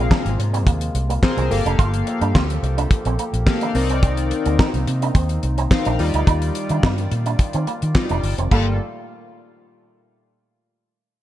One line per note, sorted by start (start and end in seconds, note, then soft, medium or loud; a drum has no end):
0.00 1.49 C3 medium
0.00 1.49 G#3 medium
0.00 1.49 A#3 medium
0.00 0.31 C4 loud
0.00 1.49 F4 loud
0.00 0.31 G#4 medium
0.00 0.32 A#4 medium
0.00 0.32 F5 loud
0.11 0.21 D4 medium
0.11 kick loud
0.11 snare loud
0.11 clap medium
0.25 0.36 G#1 medium
0.25 closed hi-hat medium
0.39 0.67 G#2 loud
0.39 muted clean electric guitar stroke soft
0.39 closed hi-hat medium
0.53 0.62 C4 medium
0.53 closed hi-hat medium
0.67 0.89 D#2 loud
0.67 0.77 A#3 loud
0.67 kick loud
0.67 closed hi-hat loud
0.81 closed hi-hat medium
0.95 1.17 C2 loud
0.95 muted clean electric guitar stroke soft
0.95 closed hi-hat medium
1.10 1.18 A#3 medium
1.10 closed hi-hat medium
1.23 1.51 C4 medium
1.23 1.51 G#4 medium
1.23 1.51 A#4 medium
1.23 1.51 C5 loud
1.23 kick loud
1.23 snare loud
1.23 clap medium
1.37 1.48 C2 medium
1.37 1.47 C4 medium
1.37 closed hi-hat soft
1.50 1.62 G1 medium
1.50 3.73 F3 medium
1.50 5.95 A#3 medium
1.50 2.41 A#3 loud
1.50 3.73 G4 medium
1.50 2.41 G4 medium
1.50 3.73 A4 medium
1.50 2.41 A4 medium
1.50 2.41 F5 loud
1.50 muted clean electric guitar stroke soft
1.50 open hi-hat medium
1.65 1.76 F1 medium
1.65 1.75 D4 medium
1.65 closed hi-hat medium
1.79 2.01 G1 loud
1.79 1.89 F4 medium
1.79 kick loud
1.79 closed hi-hat loud
1.94 closed hi-hat medium
2.07 muted clean electric guitar stroke soft
2.07 closed hi-hat medium
2.21 2.32 G2 loud
2.21 2.30 D4 medium
2.21 closed hi-hat medium
2.35 2.57 D2 loud
2.35 2.45 F4 medium
2.35 kick loud
2.35 snare loud
2.35 clap medium
2.50 closed hi-hat medium
2.63 2.85 C2 medium
2.63 muted clean electric guitar stroke soft
2.63 closed hi-hat medium
2.78 2.87 D4 loud
2.78 closed hi-hat medium
2.91 muted clean electric guitar stroke soft
2.91 kick loud
2.91 closed hi-hat medium
3.05 3.16 A#1 medium
3.05 3.15 C4 medium
3.05 closed hi-hat medium
3.19 3.29 A#3 medium
3.19 closed hi-hat medium
3.33 3.44 A#1 loud
3.33 closed hi-hat medium
3.46 3.75 A#3 medium
3.46 3.75 G4 medium
3.46 3.75 A4 medium
3.46 3.75 F5 loud
3.46 kick loud
3.46 snare loud
3.46 clap medium
3.61 3.71 D4 medium
3.61 closed hi-hat soft
3.75 4.31 C2 loud
3.75 5.97 D#3 medium
3.75 4.65 C4 loud
3.75 5.97 C4 medium
3.75 4.65 D#4 medium
3.75 5.97 D#4 medium
3.75 4.65 A#4 loud
3.75 4.65 D5 loud
3.75 muted clean electric guitar stroke soft
3.75 open hi-hat medium
3.90 3.99 C4 medium
3.90 closed hi-hat medium
4.03 4.13 C4 medium
4.03 kick loud
4.03 closed hi-hat medium
4.17 closed hi-hat medium
4.31 muted clean electric guitar stroke soft
4.31 closed hi-hat medium
4.46 4.56 D2 medium
4.46 4.55 A#3 medium
4.46 closed hi-hat medium
4.59 4.69 D#4 medium
4.59 kick loud
4.59 snare loud
4.59 clap medium
4.74 4.84 C2 medium
4.74 closed hi-hat medium
4.87 5.09 C3 loud
4.87 muted clean electric guitar stroke soft
4.87 closed hi-hat medium
5.02 5.11 D4 medium
5.02 closed hi-hat medium
5.15 5.37 D#2 loud
5.15 5.25 C4 medium
5.15 kick loud
5.15 closed hi-hat medium
5.29 closed hi-hat medium
5.43 5.65 C2 medium
5.43 muted clean electric guitar stroke soft
5.43 closed hi-hat medium
5.58 5.67 C4 medium
5.58 closed hi-hat medium
5.71 6.00 C4 medium
5.71 5.98 D#4 medium
5.71 6.00 A#4 medium
5.71 6.00 F5 loud
5.71 kick loud
5.71 snare loud
5.71 clap loud
5.85 5.97 A#1 medium
5.85 5.95 D4 medium
5.85 closed hi-hat medium
5.99 6.11 D#2 loud
5.99 8.49 D#3 medium
5.99 6.89 G3 medium
5.99 8.49 G3 medium
5.99 6.89 D#4 medium
5.99 8.49 F4 medium
5.99 6.90 F4 medium
5.99 8.49 D5 medium
5.99 6.90 D5 loud
5.99 muted clean electric guitar stroke soft
5.99 open hi-hat medium
6.14 6.25 D2 medium
6.14 6.23 D#4 medium
6.14 closed hi-hat medium
6.27 6.49 D#2 loud
6.27 6.37 D#4 loud
6.27 kick loud
6.27 closed hi-hat medium
6.42 closed hi-hat medium
6.55 muted clean electric guitar stroke soft
6.55 closed hi-hat medium
6.69 6.81 D#3 medium
6.69 6.79 D4 medium
6.69 closed hi-hat medium
6.83 7.05 G2 loud
6.83 6.94 D#4 medium
6.83 kick loud
6.83 snare loud
6.83 clap medium
6.98 closed hi-hat medium
7.11 7.34 A#2 loud
7.11 muted clean electric guitar stroke soft
7.11 closed hi-hat medium
7.26 7.35 D4 medium
7.26 closed hi-hat medium
7.39 muted clean electric guitar stroke soft
7.39 kick loud
7.39 closed hi-hat medium
7.53 7.65 D#3 loud
7.53 7.63 C4 medium
7.53 closed hi-hat medium
7.67 7.78 A#3 medium
7.67 closed hi-hat medium
7.82 7.93 D#3 medium
7.82 closed hi-hat medium
7.95 8.34 G3 medium
7.95 8.34 D#4 medium
7.95 8.35 F4 medium
7.95 8.35 D5 medium
7.95 kick loud
7.95 snare loud
7.95 clap medium
8.09 8.21 F1 medium
8.09 8.19 D4 medium
8.09 closed hi-hat medium
8.23 8.35 G1 medium
8.23 muted clean electric guitar stroke soft
8.23 open hi-hat medium
8.38 8.49 F1 medium
8.38 8.47 C4 medium
8.38 closed hi-hat medium
8.51 8.78 G1 loud
8.51 8.78 A#2 medium
8.51 8.78 G3 medium
8.51 8.78 A3 medium
8.51 8.68 A#3 medium
8.51 8.78 A#3 medium
8.51 8.78 F4 medium
8.51 8.78 A4 loud
8.51 kick loud
8.51 crash medium